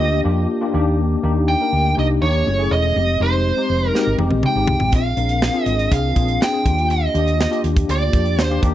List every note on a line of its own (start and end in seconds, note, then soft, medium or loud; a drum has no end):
0.00 0.20 D2 medium
0.00 0.24 A#3 medium
0.00 0.24 D4 medium
0.00 0.25 F4 medium
0.00 0.25 G4 medium
0.00 0.19 D#5 medium
0.24 0.45 F2 medium
0.24 0.49 A#3 medium
0.24 0.49 D4 medium
0.24 0.50 F4 medium
0.24 0.50 G4 medium
0.61 0.72 A#3 medium
0.61 0.73 D4 medium
0.61 0.74 F4 medium
0.61 0.73 G4 medium
0.73 1.15 D#2 medium
0.73 1.13 A#3 medium
0.73 1.13 D4 medium
0.73 1.13 D#4 medium
0.73 1.14 G4 medium
1.23 1.54 D#2 medium
1.23 1.48 A#3 medium
1.23 1.48 D4 medium
1.23 1.49 D#4 medium
1.23 1.49 G4 medium
1.48 1.94 G5 loud
1.61 1.85 A#3 medium
1.61 1.86 D4 medium
1.61 1.86 D#4 medium
1.61 1.86 A#4 medium
1.73 1.93 D2 medium
1.96 2.18 C2 medium
1.96 2.13 A#3 medium
1.96 2.14 D4 medium
1.96 2.14 D#4 medium
1.96 2.14 G4 medium
1.96 2.05 D#5 medium
2.22 2.42 D#2 medium
2.22 2.46 A#3 medium
2.22 2.46 D4 medium
2.22 2.47 D#4 medium
2.22 2.47 G4 medium
2.22 2.72 C#5 medium
2.46 2.67 F#1 medium
2.46 2.56 A3 medium
2.46 2.56 C#4 medium
2.46 2.56 E4 medium
2.46 2.57 G#4 medium
2.58 2.83 A3 medium
2.58 2.84 C#4 medium
2.58 2.84 E4 medium
2.58 2.84 G#4 medium
2.71 2.91 E1 medium
2.71 3.22 D#5 medium
2.95 3.16 F1 medium
2.95 3.12 G#3 medium
2.95 3.12 C4 medium
2.95 3.12 D#4 medium
2.95 3.13 G4 medium
3.19 3.51 F1 medium
3.19 3.45 G#3 medium
3.19 3.45 C4 medium
3.19 3.45 D#4 medium
3.19 3.46 G4 medium
3.19 3.89 C5 medium
3.57 3.82 G#3 medium
3.57 3.82 C4 medium
3.57 3.83 D#4 medium
3.57 3.83 G4 medium
3.70 3.90 F1 medium
3.89 4.16 A#4 medium
3.94 4.11 G#3 medium
3.94 4.11 C4 medium
3.94 4.11 D#4 medium
3.94 4.11 G4 medium
3.94 snare medium
4.07 4.17 G#1 medium
4.19 4.29 F1 medium
4.19 4.44 G#3 medium
4.19 4.44 C4 medium
4.19 4.44 D#4 medium
4.19 4.44 G4 medium
4.19 high tom medium
4.31 4.42 A#1 medium
4.31 high tom medium
4.43 4.95 G5 medium
4.43 mid tom medium
4.55 4.66 G#1 medium
4.55 4.81 G#3 medium
4.55 4.81 C4 medium
4.55 4.81 D#4 medium
4.55 4.81 G4 medium
4.67 4.78 C2 medium
4.67 floor tom medium
4.80 4.93 A1 medium
4.80 floor tom medium
4.92 5.13 A#1 medium
4.92 5.09 C4 medium
4.92 5.09 D4 medium
4.92 5.09 F4 medium
4.92 5.10 G#4 medium
4.92 5.66 F5 medium
4.92 kick medium
4.92 closed hi-hat medium
5.16 5.48 A#1 medium
5.16 5.42 C4 medium
5.16 5.42 D4 medium
5.16 5.43 F4 medium
5.16 5.43 A#4 medium
5.16 closed hi-hat medium
5.29 closed hi-hat medium
5.42 snare loud
5.53 5.79 C4 medium
5.53 5.79 D4 medium
5.53 5.80 F4 medium
5.53 5.80 G#4 medium
5.53 closed hi-hat soft
5.66 5.87 G#1 medium
5.66 5.92 D#5 medium
5.66 closed hi-hat medium
5.79 closed hi-hat medium
5.91 6.12 C2 medium
5.91 6.08 C4 medium
5.91 6.08 D4 medium
5.91 6.08 F4 medium
5.91 6.08 G#4 medium
5.91 6.42 F5 medium
5.91 kick medium
5.91 closed hi-hat medium
6.15 6.37 A#1 medium
6.15 6.41 C4 medium
6.15 6.41 D4 medium
6.15 6.41 F4 medium
6.15 6.41 G#4 medium
6.15 kick medium
6.15 closed hi-hat medium
6.28 closed hi-hat soft
6.42 6.87 G5 medium
6.42 snare loud
6.52 6.65 C4 medium
6.52 6.64 D4 medium
6.52 6.64 F4 medium
6.52 6.65 G#4 medium
6.64 7.06 D#2 medium
6.64 7.04 A#3 medium
6.64 7.05 D4 medium
6.64 7.05 F4 medium
6.64 7.05 G4 medium
6.64 kick medium
6.64 closed hi-hat medium
6.78 closed hi-hat soft
6.90 7.61 D#5 medium
6.90 closed hi-hat medium
7.13 7.45 D#2 medium
7.13 7.39 A#3 medium
7.13 7.39 D4 medium
7.13 7.40 F4 medium
7.13 7.40 G4 medium
7.13 closed hi-hat medium
7.28 closed hi-hat soft
7.41 snare loud
7.50 7.76 A#3 medium
7.50 7.76 D4 medium
7.50 7.77 F4 medium
7.50 7.77 G4 medium
7.50 closed hi-hat soft
7.64 7.85 D#2 medium
7.64 closed hi-hat medium
7.77 kick medium
7.77 closed hi-hat medium
7.88 8.09 D2 medium
7.88 8.05 A#3 medium
7.88 8.06 D4 medium
7.88 8.06 F4 medium
7.88 8.06 G4 medium
7.88 8.42 D5 loud
7.88 closed hi-hat medium
8.01 closed hi-hat soft
8.13 8.38 F2 medium
8.13 8.38 A#3 medium
8.13 8.38 D4 medium
8.13 8.39 F4 medium
8.13 8.39 G4 medium
8.13 kick medium
8.13 closed hi-hat medium
8.25 closed hi-hat soft
8.38 8.59 D#2 medium
8.38 8.60 C5 loud
8.38 snare loud
8.50 8.61 A#3 medium
8.50 8.61 D4 medium
8.50 8.63 F4 medium
8.50 8.62 G4 medium
8.62 8.74 D#2 medium
8.62 8.74 A#3 medium
8.62 8.74 D4 medium
8.62 8.74 D#4 medium
8.62 8.74 G4 loud
8.62 kick medium
8.62 closed hi-hat medium